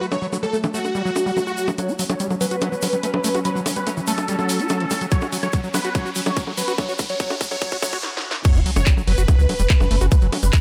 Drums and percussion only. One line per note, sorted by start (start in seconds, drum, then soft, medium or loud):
0.02 shaker soft
0.12 high bongo medium
0.12 shaker medium
0.21 shaker soft
0.32 high bongo soft
0.32 shaker medium
0.43 shaker soft
0.53 shaker medium
0.63 high bongo medium
0.63 shaker soft
0.74 shaker medium
0.85 high bongo soft
0.85 shaker soft
0.95 shaker soft
1.06 shaker soft
1.16 high bongo medium
1.16 shaker medium
1.27 shaker soft
1.37 high bongo soft
1.37 shaker medium
1.47 shaker soft
1.57 shaker medium
1.68 high bongo medium
1.68 shaker soft
1.78 closed hi-hat medium
1.78 high bongo soft
1.78 shaker medium
1.89 shaker soft
1.99 open hi-hat loud
1.99 shaker medium
2.10 closed hi-hat medium
2.10 high bongo medium
2.10 shaker soft
2.20 closed hi-hat medium
2.20 shaker medium
2.30 high bongo soft
2.30 shaker soft
2.41 open hi-hat medium
2.41 shaker medium
2.51 closed hi-hat medium
2.51 shaker soft
2.61 closed hi-hat medium
2.61 high bongo medium
2.61 shaker soft
2.73 shaker soft
2.82 open hi-hat loud
2.82 high bongo soft
2.82 shaker medium
2.93 closed hi-hat medium
2.93 shaker soft
3.03 closed hi-hat medium
3.03 shaker soft
3.14 high bongo medium
3.24 open hi-hat medium
3.24 shaker medium
3.35 closed hi-hat medium
3.35 high bongo soft
3.35 shaker soft
3.45 closed hi-hat medium
3.45 shaker medium
3.56 shaker soft
3.66 open hi-hat loud
3.66 high bongo medium
3.66 shaker medium
3.76 closed hi-hat medium
3.76 shaker soft
3.87 closed hi-hat medium
3.87 high bongo soft
3.87 shaker medium
3.97 shaker soft
4.07 open hi-hat loud
4.07 shaker loud
4.18 closed hi-hat medium
4.18 high bongo medium
4.18 shaker soft
4.28 closed hi-hat medium
4.28 shaker medium
4.39 high bongo soft
4.39 shaker soft
4.49 open hi-hat loud
4.49 shaker medium
4.60 closed hi-hat medium
4.60 shaker soft
4.69 closed hi-hat medium
4.69 high bongo medium
4.69 shaker medium
4.80 closed hi-hat soft
4.91 open hi-hat medium
4.91 high bongo soft
4.91 shaker medium
5.01 closed hi-hat medium
5.01 shaker soft
5.11 kick loud
5.11 closed hi-hat medium
5.11 shaker medium
5.21 high bongo medium
5.21 shaker soft
5.32 open hi-hat loud
5.32 shaker loud
5.42 closed hi-hat medium
5.42 high bongo soft
5.42 shaker soft
5.53 kick loud
5.53 closed hi-hat medium
5.53 shaker medium
5.64 shaker soft
5.74 open hi-hat loud
5.74 high bongo medium
5.74 shaker loud
5.84 closed hi-hat medium
5.84 shaker soft
5.95 kick loud
5.95 closed hi-hat medium
5.95 high bongo soft
5.95 shaker soft
6.06 shaker soft
6.15 open hi-hat loud
6.15 shaker loud
6.26 closed hi-hat medium
6.26 high bongo medium
6.26 shaker soft
6.37 kick loud
6.37 closed hi-hat medium
6.37 shaker medium
6.47 high bongo soft
6.57 open hi-hat loud
6.57 shaker loud
6.68 closed hi-hat medium
6.68 shaker soft
6.78 kick loud
6.78 closed hi-hat medium
6.78 high bongo medium
6.78 shaker medium
6.89 shaker soft
6.99 kick loud
6.99 open hi-hat loud
6.99 high bongo soft
6.99 shaker medium
7.09 closed hi-hat medium
7.09 shaker soft
7.20 kick loud
7.20 closed hi-hat medium
7.20 shaker medium
7.29 high bongo medium
7.29 shaker soft
7.41 kick loud
7.41 open hi-hat loud
7.41 shaker medium
7.51 closed hi-hat medium
7.51 high bongo soft
7.51 shaker soft
7.61 kick loud
7.61 closed hi-hat medium
7.61 shaker medium
7.72 kick medium
7.72 shaker soft
7.82 kick loud
7.82 open hi-hat loud
7.82 high bongo medium
7.82 shaker loud
7.93 kick medium
7.93 closed hi-hat soft
7.93 shaker soft
8.03 snare medium
8.17 snare medium
8.31 snare loud
8.44 kick loud
8.44 closed hi-hat medium
8.44 crash loud
8.44 high bongo soft
8.44 shaker medium
8.55 shaker soft
8.66 open hi-hat loud
8.76 closed hi-hat medium
8.76 high bongo medium
8.76 shaker medium
8.86 kick loud
8.86 clap loud
8.86 closed hi-hat medium
8.86 shaker medium
8.97 high bongo soft
8.97 shaker soft
9.07 open hi-hat loud
9.18 closed hi-hat medium
9.18 shaker medium
9.28 kick loud
9.28 closed hi-hat medium
9.28 high bongo medium
9.28 shaker medium
9.39 shaker soft
9.49 open hi-hat loud
9.49 high bongo soft
9.59 closed hi-hat medium
9.59 shaker medium
9.70 kick loud
9.70 clap loud
9.70 closed hi-hat medium
9.70 shaker medium
9.80 high bongo medium
9.80 shaker soft
9.91 open hi-hat loud
10.01 closed hi-hat medium
10.01 high bongo soft
10.01 shaker medium
10.12 kick loud
10.12 closed hi-hat medium
10.12 shaker medium
10.22 closed hi-hat soft
10.22 shaker soft
10.32 open hi-hat loud
10.32 high bongo medium
10.43 closed hi-hat medium
10.43 shaker medium
10.53 kick loud
10.53 clap loud
10.53 closed hi-hat medium
10.53 high bongo soft
10.53 shaker medium